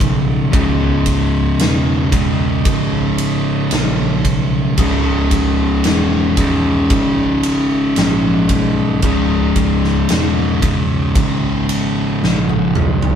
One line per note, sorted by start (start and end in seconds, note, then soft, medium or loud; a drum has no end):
0.00 0.49 B1 medium
0.00 0.51 C#2 medium
0.00 0.50 G#2 medium
0.00 0.54 C#3 medium
0.00 kick medium
0.00 ride medium
0.52 1.56 C#1 loud
0.52 2.14 C#2 medium
0.52 2.09 G#2 medium
0.52 2.12 C#3 loud
0.52 kick loud
0.52 ride loud
1.06 kick medium
1.06 ride medium
1.58 2.61 E1 medium
1.58 snare loud
1.58 ride loud
2.12 4.76 C#2 medium
2.12 4.75 G#2 medium
2.12 4.79 C#3 loud
2.12 kick loud
2.12 ride medium
2.65 3.68 G#1 medium
2.65 kick loud
2.65 ride loud
3.18 ride medium
3.71 4.21 A#1 loud
3.71 snare loud
3.71 ride loud
4.25 4.74 B1 medium
4.25 kick medium
4.25 ride medium
4.77 5.80 C#1 medium
4.77 6.39 C#2 loud
4.77 6.34 G#2 medium
4.77 6.37 C#3 loud
4.77 kick loud
4.77 ride loud
5.31 kick medium
5.31 ride medium
5.84 6.86 E1 loud
5.84 snare loud
5.84 ride loud
6.37 9.02 C#2 medium
6.37 9.00 G#2 medium
6.37 9.04 C#3 loud
6.37 kick loud
6.37 ride medium
6.90 7.93 G#1 medium
6.90 kick loud
6.90 ride loud
7.43 ride medium
7.96 8.46 A#1 loud
7.96 snare loud
7.96 ride loud
8.49 8.99 B1 medium
8.49 kick medium
8.49 ride medium
9.02 10.05 C#1 medium
9.02 10.59 C#2 medium
9.02 10.59 G#2 medium
9.02 10.59 C#3 medium
9.02 kick loud
9.02 ride loud
9.56 kick medium
9.56 ride medium
9.84 snare soft
10.09 11.11 E1 medium
10.09 snare loud
10.09 ride loud
10.62 13.15 C#2 medium
10.62 13.15 G#2 medium
10.62 13.15 C#3 medium
10.62 kick loud
10.62 ride medium
11.15 12.18 G#1 loud
11.15 kick loud
11.15 ride loud
11.69 ride medium
12.23 12.72 A#1 medium
12.23 snare medium
12.49 high tom medium
12.75 13.15 B1 medium
12.75 mid tom medium
13.02 floor tom medium